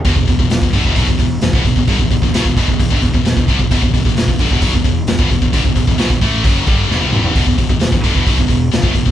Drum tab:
HH |o-o-o-o-o-o-o-o-|o-o-o-o-o-o-o-o-|o-o-o-o-o-o-o-o-|o-o-o-o-o-o-----|
SD |----o-------o---|---oo-------o---|---oo-------o---|---oo-------o---|
T2 |----------------|----------------|----------------|--------------o-|
FT |----------------|----------------|----------------|---------------o|
BD |oooo-oooooo--ooo|oooo-ooooooo-ooo|oooo-oooooo--ooo|oooo-oo-o-o-----|

HH |o-o-o-o-o-o-o-o-|
SD |----o-------o---|
T2 |----------------|
FT |----------------|
BD |oooo-oooooo--ooo|